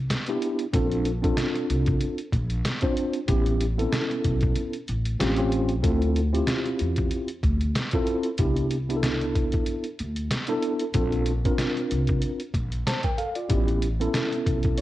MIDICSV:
0, 0, Header, 1, 4, 480
1, 0, Start_track
1, 0, Tempo, 638298
1, 554, Time_signature, 4, 2, 24, 8
1, 11139, End_track
2, 0, Start_track
2, 0, Title_t, "Tine electric piano"
2, 0, Program_c, 0, 4
2, 209, Note_on_c, 0, 59, 78
2, 215, Note_on_c, 0, 62, 75
2, 217, Note_on_c, 0, 64, 77
2, 219, Note_on_c, 0, 67, 81
2, 475, Note_off_c, 0, 59, 0
2, 478, Note_off_c, 0, 62, 0
2, 479, Note_off_c, 0, 64, 0
2, 480, Note_off_c, 0, 67, 0
2, 549, Note_on_c, 0, 60, 79
2, 552, Note_on_c, 0, 62, 67
2, 557, Note_on_c, 0, 65, 73
2, 558, Note_on_c, 0, 69, 82
2, 825, Note_off_c, 0, 60, 0
2, 826, Note_off_c, 0, 62, 0
2, 829, Note_off_c, 0, 65, 0
2, 829, Note_off_c, 0, 69, 0
2, 920, Note_on_c, 0, 60, 75
2, 926, Note_on_c, 0, 62, 74
2, 927, Note_on_c, 0, 65, 72
2, 932, Note_on_c, 0, 69, 82
2, 1643, Note_off_c, 0, 60, 0
2, 1646, Note_off_c, 0, 62, 0
2, 1646, Note_off_c, 0, 65, 0
2, 1649, Note_off_c, 0, 69, 0
2, 2120, Note_on_c, 0, 60, 75
2, 2124, Note_on_c, 0, 62, 75
2, 2128, Note_on_c, 0, 65, 67
2, 2131, Note_on_c, 0, 72, 84
2, 2390, Note_off_c, 0, 60, 0
2, 2392, Note_off_c, 0, 62, 0
2, 2395, Note_off_c, 0, 65, 0
2, 2396, Note_off_c, 0, 72, 0
2, 2464, Note_on_c, 0, 59, 84
2, 2465, Note_on_c, 0, 61, 70
2, 2466, Note_on_c, 0, 64, 69
2, 2471, Note_on_c, 0, 67, 91
2, 2742, Note_off_c, 0, 59, 0
2, 2743, Note_off_c, 0, 61, 0
2, 2743, Note_off_c, 0, 64, 0
2, 2746, Note_off_c, 0, 67, 0
2, 2842, Note_on_c, 0, 59, 81
2, 2842, Note_on_c, 0, 60, 56
2, 2844, Note_on_c, 0, 64, 67
2, 2850, Note_on_c, 0, 69, 79
2, 2889, Note_off_c, 0, 60, 0
2, 2895, Note_on_c, 0, 61, 69
2, 3564, Note_off_c, 0, 59, 0
2, 3565, Note_off_c, 0, 64, 0
2, 3568, Note_off_c, 0, 69, 0
2, 3590, Note_off_c, 0, 61, 0
2, 3908, Note_on_c, 0, 60, 82
2, 3909, Note_on_c, 0, 61, 80
2, 3913, Note_on_c, 0, 65, 86
2, 3917, Note_on_c, 0, 67, 89
2, 4021, Note_off_c, 0, 60, 0
2, 4021, Note_off_c, 0, 61, 0
2, 4023, Note_off_c, 0, 65, 0
2, 4026, Note_off_c, 0, 67, 0
2, 4040, Note_on_c, 0, 60, 82
2, 4041, Note_on_c, 0, 61, 76
2, 4046, Note_on_c, 0, 65, 78
2, 4049, Note_on_c, 0, 67, 82
2, 4310, Note_off_c, 0, 60, 0
2, 4311, Note_off_c, 0, 61, 0
2, 4314, Note_off_c, 0, 65, 0
2, 4315, Note_off_c, 0, 67, 0
2, 4383, Note_on_c, 0, 60, 84
2, 4383, Note_on_c, 0, 64, 66
2, 4387, Note_on_c, 0, 65, 68
2, 4388, Note_on_c, 0, 69, 79
2, 4662, Note_off_c, 0, 60, 0
2, 4662, Note_off_c, 0, 64, 0
2, 4664, Note_off_c, 0, 65, 0
2, 4664, Note_off_c, 0, 69, 0
2, 4759, Note_on_c, 0, 60, 78
2, 4761, Note_on_c, 0, 64, 72
2, 4765, Note_on_c, 0, 65, 73
2, 4768, Note_on_c, 0, 67, 85
2, 5482, Note_off_c, 0, 60, 0
2, 5483, Note_off_c, 0, 64, 0
2, 5485, Note_off_c, 0, 65, 0
2, 5487, Note_off_c, 0, 67, 0
2, 5967, Note_on_c, 0, 60, 82
2, 5970, Note_on_c, 0, 64, 76
2, 5972, Note_on_c, 0, 65, 74
2, 5975, Note_on_c, 0, 69, 93
2, 6234, Note_off_c, 0, 60, 0
2, 6236, Note_off_c, 0, 64, 0
2, 6237, Note_off_c, 0, 65, 0
2, 6238, Note_off_c, 0, 69, 0
2, 6314, Note_on_c, 0, 59, 72
2, 6316, Note_on_c, 0, 62, 73
2, 6320, Note_on_c, 0, 64, 71
2, 6321, Note_on_c, 0, 67, 82
2, 6587, Note_off_c, 0, 59, 0
2, 6588, Note_off_c, 0, 62, 0
2, 6590, Note_off_c, 0, 64, 0
2, 6591, Note_off_c, 0, 67, 0
2, 6688, Note_on_c, 0, 59, 77
2, 6690, Note_on_c, 0, 62, 68
2, 6696, Note_on_c, 0, 64, 75
2, 6698, Note_on_c, 0, 67, 64
2, 6736, Note_off_c, 0, 67, 0
2, 6744, Note_on_c, 0, 69, 79
2, 7407, Note_off_c, 0, 59, 0
2, 7408, Note_off_c, 0, 62, 0
2, 7411, Note_off_c, 0, 64, 0
2, 7435, Note_off_c, 0, 69, 0
2, 7883, Note_on_c, 0, 59, 78
2, 7886, Note_on_c, 0, 62, 77
2, 7888, Note_on_c, 0, 64, 73
2, 7891, Note_on_c, 0, 69, 95
2, 8152, Note_off_c, 0, 59, 0
2, 8153, Note_off_c, 0, 62, 0
2, 8155, Note_off_c, 0, 64, 0
2, 8156, Note_off_c, 0, 69, 0
2, 8228, Note_on_c, 0, 60, 74
2, 8231, Note_on_c, 0, 62, 72
2, 8234, Note_on_c, 0, 65, 76
2, 8237, Note_on_c, 0, 69, 87
2, 8504, Note_off_c, 0, 60, 0
2, 8506, Note_off_c, 0, 62, 0
2, 8507, Note_off_c, 0, 65, 0
2, 8509, Note_off_c, 0, 69, 0
2, 8610, Note_on_c, 0, 60, 79
2, 8614, Note_on_c, 0, 62, 69
2, 8615, Note_on_c, 0, 65, 68
2, 8619, Note_on_c, 0, 70, 89
2, 9328, Note_off_c, 0, 60, 0
2, 9330, Note_off_c, 0, 62, 0
2, 9330, Note_off_c, 0, 65, 0
2, 9332, Note_off_c, 0, 70, 0
2, 9675, Note_on_c, 0, 81, 62
2, 9677, Note_on_c, 0, 72, 54
2, 9805, Note_off_c, 0, 81, 0
2, 9806, Note_off_c, 0, 72, 0
2, 9807, Note_on_c, 0, 79, 73
2, 9810, Note_on_c, 0, 70, 57
2, 9907, Note_off_c, 0, 79, 0
2, 9908, Note_off_c, 0, 70, 0
2, 9910, Note_on_c, 0, 77, 65
2, 9914, Note_on_c, 0, 69, 53
2, 10043, Note_off_c, 0, 77, 0
2, 10044, Note_on_c, 0, 74, 58
2, 10045, Note_off_c, 0, 69, 0
2, 10048, Note_on_c, 0, 65, 50
2, 10144, Note_on_c, 0, 59, 77
2, 10147, Note_on_c, 0, 61, 75
2, 10149, Note_on_c, 0, 64, 77
2, 10156, Note_on_c, 0, 67, 87
2, 10275, Note_off_c, 0, 74, 0
2, 10278, Note_off_c, 0, 65, 0
2, 10422, Note_off_c, 0, 59, 0
2, 10424, Note_off_c, 0, 61, 0
2, 10425, Note_off_c, 0, 64, 0
2, 10428, Note_off_c, 0, 67, 0
2, 10526, Note_on_c, 0, 59, 79
2, 10531, Note_on_c, 0, 61, 73
2, 10534, Note_on_c, 0, 64, 80
2, 10535, Note_on_c, 0, 69, 88
2, 11111, Note_off_c, 0, 59, 0
2, 11111, Note_off_c, 0, 64, 0
2, 11114, Note_off_c, 0, 61, 0
2, 11115, Note_on_c, 0, 73, 60
2, 11116, Note_off_c, 0, 69, 0
2, 11139, Note_off_c, 0, 73, 0
2, 11139, End_track
3, 0, Start_track
3, 0, Title_t, "Upright bass"
3, 0, Program_c, 1, 32
3, 556, Note_on_c, 1, 34, 96
3, 971, Note_off_c, 1, 34, 0
3, 1278, Note_on_c, 1, 36, 86
3, 1484, Note_off_c, 1, 36, 0
3, 1752, Note_on_c, 1, 34, 90
3, 1961, Note_off_c, 1, 34, 0
3, 2471, Note_on_c, 1, 33, 98
3, 2888, Note_off_c, 1, 33, 0
3, 3195, Note_on_c, 1, 35, 79
3, 3402, Note_off_c, 1, 35, 0
3, 3676, Note_on_c, 1, 33, 89
3, 3883, Note_off_c, 1, 33, 0
3, 3914, Note_on_c, 1, 33, 90
3, 4394, Note_off_c, 1, 33, 0
3, 4394, Note_on_c, 1, 38, 92
3, 4810, Note_off_c, 1, 38, 0
3, 5121, Note_on_c, 1, 40, 82
3, 5326, Note_off_c, 1, 40, 0
3, 5589, Note_on_c, 1, 38, 82
3, 5799, Note_off_c, 1, 38, 0
3, 6313, Note_on_c, 1, 36, 84
3, 7141, Note_off_c, 1, 36, 0
3, 7522, Note_on_c, 1, 38, 79
3, 7726, Note_off_c, 1, 38, 0
3, 8234, Note_on_c, 1, 34, 103
3, 8650, Note_off_c, 1, 34, 0
3, 8959, Note_on_c, 1, 36, 79
3, 9165, Note_off_c, 1, 36, 0
3, 9429, Note_on_c, 1, 34, 84
3, 9639, Note_off_c, 1, 34, 0
3, 10154, Note_on_c, 1, 33, 93
3, 10570, Note_off_c, 1, 33, 0
3, 10879, Note_on_c, 1, 35, 76
3, 11085, Note_off_c, 1, 35, 0
3, 11139, End_track
4, 0, Start_track
4, 0, Title_t, "Drums"
4, 76, Note_on_c, 9, 38, 94
4, 82, Note_on_c, 9, 42, 83
4, 151, Note_off_c, 9, 38, 0
4, 157, Note_off_c, 9, 42, 0
4, 199, Note_on_c, 9, 42, 54
4, 274, Note_off_c, 9, 42, 0
4, 316, Note_on_c, 9, 42, 71
4, 392, Note_off_c, 9, 42, 0
4, 443, Note_on_c, 9, 42, 48
4, 518, Note_off_c, 9, 42, 0
4, 553, Note_on_c, 9, 36, 116
4, 553, Note_on_c, 9, 42, 89
4, 628, Note_off_c, 9, 36, 0
4, 628, Note_off_c, 9, 42, 0
4, 689, Note_on_c, 9, 42, 47
4, 764, Note_off_c, 9, 42, 0
4, 792, Note_on_c, 9, 42, 73
4, 867, Note_off_c, 9, 42, 0
4, 932, Note_on_c, 9, 42, 53
4, 933, Note_on_c, 9, 36, 88
4, 1008, Note_off_c, 9, 36, 0
4, 1008, Note_off_c, 9, 42, 0
4, 1031, Note_on_c, 9, 38, 120
4, 1037, Note_on_c, 9, 42, 93
4, 1106, Note_off_c, 9, 38, 0
4, 1112, Note_off_c, 9, 42, 0
4, 1170, Note_on_c, 9, 42, 40
4, 1245, Note_off_c, 9, 42, 0
4, 1278, Note_on_c, 9, 42, 74
4, 1353, Note_off_c, 9, 42, 0
4, 1401, Note_on_c, 9, 42, 52
4, 1411, Note_on_c, 9, 36, 94
4, 1476, Note_off_c, 9, 42, 0
4, 1486, Note_off_c, 9, 36, 0
4, 1509, Note_on_c, 9, 42, 74
4, 1584, Note_off_c, 9, 42, 0
4, 1641, Note_on_c, 9, 42, 50
4, 1716, Note_off_c, 9, 42, 0
4, 1748, Note_on_c, 9, 36, 84
4, 1753, Note_on_c, 9, 42, 61
4, 1824, Note_off_c, 9, 36, 0
4, 1828, Note_off_c, 9, 42, 0
4, 1879, Note_on_c, 9, 42, 54
4, 1955, Note_off_c, 9, 42, 0
4, 1992, Note_on_c, 9, 38, 100
4, 1998, Note_on_c, 9, 42, 84
4, 2067, Note_off_c, 9, 38, 0
4, 2073, Note_off_c, 9, 42, 0
4, 2112, Note_on_c, 9, 42, 57
4, 2125, Note_on_c, 9, 36, 74
4, 2188, Note_off_c, 9, 42, 0
4, 2200, Note_off_c, 9, 36, 0
4, 2232, Note_on_c, 9, 42, 67
4, 2308, Note_off_c, 9, 42, 0
4, 2357, Note_on_c, 9, 42, 55
4, 2432, Note_off_c, 9, 42, 0
4, 2467, Note_on_c, 9, 42, 92
4, 2469, Note_on_c, 9, 36, 113
4, 2542, Note_off_c, 9, 42, 0
4, 2545, Note_off_c, 9, 36, 0
4, 2602, Note_on_c, 9, 42, 51
4, 2677, Note_off_c, 9, 42, 0
4, 2712, Note_on_c, 9, 42, 77
4, 2787, Note_off_c, 9, 42, 0
4, 2852, Note_on_c, 9, 42, 56
4, 2927, Note_off_c, 9, 42, 0
4, 2952, Note_on_c, 9, 38, 112
4, 2958, Note_on_c, 9, 42, 83
4, 3027, Note_off_c, 9, 38, 0
4, 3033, Note_off_c, 9, 42, 0
4, 3091, Note_on_c, 9, 42, 39
4, 3166, Note_off_c, 9, 42, 0
4, 3192, Note_on_c, 9, 42, 75
4, 3193, Note_on_c, 9, 36, 86
4, 3267, Note_off_c, 9, 42, 0
4, 3268, Note_off_c, 9, 36, 0
4, 3314, Note_on_c, 9, 42, 50
4, 3329, Note_on_c, 9, 36, 90
4, 3389, Note_off_c, 9, 42, 0
4, 3405, Note_off_c, 9, 36, 0
4, 3425, Note_on_c, 9, 42, 76
4, 3500, Note_off_c, 9, 42, 0
4, 3560, Note_on_c, 9, 42, 47
4, 3635, Note_off_c, 9, 42, 0
4, 3670, Note_on_c, 9, 42, 59
4, 3745, Note_off_c, 9, 42, 0
4, 3801, Note_on_c, 9, 42, 56
4, 3876, Note_off_c, 9, 42, 0
4, 3912, Note_on_c, 9, 38, 96
4, 3918, Note_on_c, 9, 42, 85
4, 3987, Note_off_c, 9, 38, 0
4, 3993, Note_off_c, 9, 42, 0
4, 4034, Note_on_c, 9, 42, 56
4, 4110, Note_off_c, 9, 42, 0
4, 4151, Note_on_c, 9, 42, 66
4, 4226, Note_off_c, 9, 42, 0
4, 4277, Note_on_c, 9, 42, 52
4, 4352, Note_off_c, 9, 42, 0
4, 4390, Note_on_c, 9, 42, 96
4, 4392, Note_on_c, 9, 36, 116
4, 4465, Note_off_c, 9, 42, 0
4, 4467, Note_off_c, 9, 36, 0
4, 4525, Note_on_c, 9, 42, 46
4, 4601, Note_off_c, 9, 42, 0
4, 4632, Note_on_c, 9, 42, 70
4, 4708, Note_off_c, 9, 42, 0
4, 4772, Note_on_c, 9, 42, 53
4, 4847, Note_off_c, 9, 42, 0
4, 4866, Note_on_c, 9, 38, 113
4, 4872, Note_on_c, 9, 42, 87
4, 4941, Note_off_c, 9, 38, 0
4, 4947, Note_off_c, 9, 42, 0
4, 5006, Note_on_c, 9, 42, 42
4, 5081, Note_off_c, 9, 42, 0
4, 5108, Note_on_c, 9, 42, 71
4, 5183, Note_off_c, 9, 42, 0
4, 5236, Note_on_c, 9, 42, 55
4, 5249, Note_on_c, 9, 36, 91
4, 5311, Note_off_c, 9, 42, 0
4, 5325, Note_off_c, 9, 36, 0
4, 5346, Note_on_c, 9, 42, 85
4, 5421, Note_off_c, 9, 42, 0
4, 5476, Note_on_c, 9, 42, 50
4, 5552, Note_off_c, 9, 42, 0
4, 5589, Note_on_c, 9, 36, 92
4, 5592, Note_on_c, 9, 42, 63
4, 5664, Note_off_c, 9, 36, 0
4, 5667, Note_off_c, 9, 42, 0
4, 5722, Note_on_c, 9, 42, 51
4, 5797, Note_off_c, 9, 42, 0
4, 5831, Note_on_c, 9, 38, 97
4, 5837, Note_on_c, 9, 42, 82
4, 5907, Note_off_c, 9, 38, 0
4, 5912, Note_off_c, 9, 42, 0
4, 5951, Note_on_c, 9, 42, 58
4, 5965, Note_on_c, 9, 36, 89
4, 6026, Note_off_c, 9, 42, 0
4, 6040, Note_off_c, 9, 36, 0
4, 6068, Note_on_c, 9, 42, 68
4, 6143, Note_off_c, 9, 42, 0
4, 6193, Note_on_c, 9, 42, 49
4, 6268, Note_off_c, 9, 42, 0
4, 6302, Note_on_c, 9, 42, 88
4, 6310, Note_on_c, 9, 36, 119
4, 6377, Note_off_c, 9, 42, 0
4, 6385, Note_off_c, 9, 36, 0
4, 6442, Note_on_c, 9, 42, 46
4, 6517, Note_off_c, 9, 42, 0
4, 6549, Note_on_c, 9, 42, 79
4, 6624, Note_off_c, 9, 42, 0
4, 6694, Note_on_c, 9, 42, 55
4, 6769, Note_off_c, 9, 42, 0
4, 6791, Note_on_c, 9, 38, 115
4, 6798, Note_on_c, 9, 42, 92
4, 6867, Note_off_c, 9, 38, 0
4, 6873, Note_off_c, 9, 42, 0
4, 6930, Note_on_c, 9, 42, 41
4, 7005, Note_off_c, 9, 42, 0
4, 7035, Note_on_c, 9, 36, 82
4, 7036, Note_on_c, 9, 42, 74
4, 7111, Note_off_c, 9, 36, 0
4, 7111, Note_off_c, 9, 42, 0
4, 7160, Note_on_c, 9, 42, 51
4, 7173, Note_on_c, 9, 36, 89
4, 7236, Note_off_c, 9, 42, 0
4, 7248, Note_off_c, 9, 36, 0
4, 7267, Note_on_c, 9, 42, 74
4, 7342, Note_off_c, 9, 42, 0
4, 7399, Note_on_c, 9, 42, 48
4, 7474, Note_off_c, 9, 42, 0
4, 7514, Note_on_c, 9, 42, 60
4, 7589, Note_off_c, 9, 42, 0
4, 7642, Note_on_c, 9, 42, 51
4, 7718, Note_off_c, 9, 42, 0
4, 7752, Note_on_c, 9, 38, 92
4, 7757, Note_on_c, 9, 42, 85
4, 7827, Note_off_c, 9, 38, 0
4, 7832, Note_off_c, 9, 42, 0
4, 7873, Note_on_c, 9, 42, 59
4, 7948, Note_off_c, 9, 42, 0
4, 7990, Note_on_c, 9, 42, 67
4, 8066, Note_off_c, 9, 42, 0
4, 8118, Note_on_c, 9, 42, 52
4, 8193, Note_off_c, 9, 42, 0
4, 8226, Note_on_c, 9, 42, 96
4, 8231, Note_on_c, 9, 36, 110
4, 8301, Note_off_c, 9, 42, 0
4, 8306, Note_off_c, 9, 36, 0
4, 8365, Note_on_c, 9, 42, 47
4, 8440, Note_off_c, 9, 42, 0
4, 8466, Note_on_c, 9, 42, 76
4, 8542, Note_off_c, 9, 42, 0
4, 8611, Note_on_c, 9, 42, 55
4, 8612, Note_on_c, 9, 36, 96
4, 8686, Note_off_c, 9, 42, 0
4, 8687, Note_off_c, 9, 36, 0
4, 8710, Note_on_c, 9, 38, 124
4, 8716, Note_on_c, 9, 42, 93
4, 8785, Note_off_c, 9, 38, 0
4, 8791, Note_off_c, 9, 42, 0
4, 8850, Note_on_c, 9, 42, 41
4, 8925, Note_off_c, 9, 42, 0
4, 8954, Note_on_c, 9, 42, 72
4, 9029, Note_off_c, 9, 42, 0
4, 9078, Note_on_c, 9, 42, 50
4, 9090, Note_on_c, 9, 36, 92
4, 9153, Note_off_c, 9, 42, 0
4, 9165, Note_off_c, 9, 36, 0
4, 9186, Note_on_c, 9, 42, 81
4, 9261, Note_off_c, 9, 42, 0
4, 9322, Note_on_c, 9, 42, 52
4, 9397, Note_off_c, 9, 42, 0
4, 9428, Note_on_c, 9, 36, 90
4, 9432, Note_on_c, 9, 42, 67
4, 9503, Note_off_c, 9, 36, 0
4, 9507, Note_off_c, 9, 42, 0
4, 9564, Note_on_c, 9, 42, 51
4, 9639, Note_off_c, 9, 42, 0
4, 9676, Note_on_c, 9, 38, 99
4, 9682, Note_on_c, 9, 42, 90
4, 9752, Note_off_c, 9, 38, 0
4, 9757, Note_off_c, 9, 42, 0
4, 9799, Note_on_c, 9, 42, 55
4, 9806, Note_on_c, 9, 36, 76
4, 9874, Note_off_c, 9, 42, 0
4, 9881, Note_off_c, 9, 36, 0
4, 9913, Note_on_c, 9, 42, 65
4, 9988, Note_off_c, 9, 42, 0
4, 10042, Note_on_c, 9, 42, 49
4, 10117, Note_off_c, 9, 42, 0
4, 10149, Note_on_c, 9, 42, 90
4, 10152, Note_on_c, 9, 36, 120
4, 10224, Note_off_c, 9, 42, 0
4, 10227, Note_off_c, 9, 36, 0
4, 10287, Note_on_c, 9, 42, 46
4, 10362, Note_off_c, 9, 42, 0
4, 10393, Note_on_c, 9, 42, 79
4, 10469, Note_off_c, 9, 42, 0
4, 10535, Note_on_c, 9, 42, 53
4, 10610, Note_off_c, 9, 42, 0
4, 10633, Note_on_c, 9, 38, 114
4, 10639, Note_on_c, 9, 42, 95
4, 10708, Note_off_c, 9, 38, 0
4, 10714, Note_off_c, 9, 42, 0
4, 10772, Note_on_c, 9, 42, 42
4, 10847, Note_off_c, 9, 42, 0
4, 10877, Note_on_c, 9, 36, 91
4, 10879, Note_on_c, 9, 42, 72
4, 10952, Note_off_c, 9, 36, 0
4, 10954, Note_off_c, 9, 42, 0
4, 11001, Note_on_c, 9, 42, 53
4, 11013, Note_on_c, 9, 36, 94
4, 11076, Note_off_c, 9, 42, 0
4, 11088, Note_off_c, 9, 36, 0
4, 11111, Note_on_c, 9, 42, 81
4, 11139, Note_off_c, 9, 42, 0
4, 11139, End_track
0, 0, End_of_file